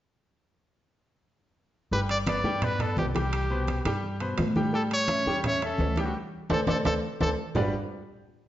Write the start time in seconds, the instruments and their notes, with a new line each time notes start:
1.91 upright bass G1, grand piano G3 G4 G5, trumpet B4, high conga
2.09 trumpet D5, high conga, high timbale
2.27 grand piano B3 B4 D5, trumpet D5, high conga, high timbale, low timbale
2.43 upright bass G2, grand piano G3 G4 G5, high conga
2.62 grand piano B3 B4 D5, trumpet B4, high conga, low conga, high timbale
2.79 grand piano B3 B4 D5, trumpet A4, high conga, low conga, high timbale
2.97 upright bass C2, trumpet G4, high conga, low timbale
3.15 grand piano G3 G4 G5, trumpet G4, high conga, high timbale
3.33 high conga, high timbale
3.50 grand piano B2 B4 C5, high conga
3.68 high conga, high timbale, low timbale
3.85 upright bass G2, grand piano G3 G4 G5, high conga, high timbale
4.03 high conga
4.20 grand piano B2 B4 C5, high conga, high timbale
4.38 upright bass A2, high conga, high timbale, low timbale
4.56 grand piano G3 G4 G5, high conga
4.73 grand piano G3 G4 G5, trumpet A4, high conga
4.91 trumpet C#5, high conga, high timbale
5.08 grand piano C#4 C#5 E5, high conga, high timbale, low timbale
5.26 upright bass E2, grand piano G3 G4 G5, high conga
5.44 grand piano C#4 C#5 E5, trumpet C#5, high conga, low conga, high timbale
5.61 grand piano C#4 C#5 E5, trumpet A4, high conga, high timbale
5.78 upright bass D2, high conga, low timbale
5.96 grand piano G3 G4 G5, high conga, high timbale
6.01 trumpet G4
6.06 trumpet F#4
6.15 trumpet G4
6.50 upright bass D2, grand piano A4 C5 D5, trumpet A4, high conga, high timbale
6.67 upright bass D2, grand piano A4 C5 D5, trumpet A4, high conga, high timbale
6.85 upright bass D2, grand piano A4 C5 D5, trumpet A4, high conga, high timbale
7.21 upright bass D2, grand piano A4 C5 D5, trumpet A4, high conga, high timbale
7.55 upright bass G1, grand piano G3 D4 F#4 G4 B4 D5, low conga, low timbale